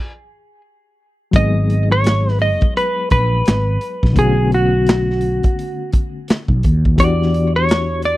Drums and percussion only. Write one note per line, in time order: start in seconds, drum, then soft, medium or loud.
1.33 kick loud
1.33 closed hi-hat medium
1.70 closed hi-hat medium
2.04 snare loud
2.04 clap medium
2.04 closed hi-hat medium
2.28 snare soft
2.39 open hi-hat soft
2.61 kick loud
2.61 closed hi-hat soft
2.77 closed hi-hat medium
3.10 kick medium
3.10 closed hi-hat medium
3.46 snare loud
3.46 clap medium
3.46 closed hi-hat medium
3.81 closed hi-hat medium
4.03 kick medium
4.03 snare soft
4.16 kick loud
4.16 closed hi-hat medium
4.52 closed hi-hat medium
4.87 snare loud
4.87 clap medium
4.87 closed hi-hat medium
5.10 snare soft
5.21 closed hi-hat medium
5.43 kick loud
5.43 closed hi-hat soft
5.59 closed hi-hat medium
5.92 kick medium
5.92 closed hi-hat medium
6.28 snare loud
6.28 clap medium
6.28 closed hi-hat medium
6.48 kick medium
6.63 kick loud
6.63 closed hi-hat medium
6.85 kick medium
6.98 kick loud
6.98 closed hi-hat medium
7.22 snare soft
7.34 closed hi-hat medium
7.69 snare loud
7.69 clap medium
7.69 closed hi-hat medium
8.02 closed hi-hat medium